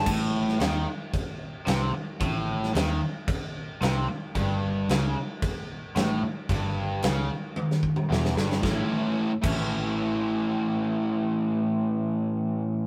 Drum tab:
CC |x---x---x---x---|x---x---x---x---|x---x---x---x---|x---x-----------|
SD |---oo-------o---|---oo-------o---|----o-------o---|----o----o--oooo|
T1 |----------------|----------------|----------------|--------o-------|
T2 |----------------|----------------|----------------|-----------o----|
BD |o-------o-------|o-------o-------|o-------o-------|o---------o-----|

CC |------x---------|----------------|
SD |o---------------|----------------|
T1 |----------------|----------------|
T2 |----------------|----------------|
BD |o-----o---------|----------------|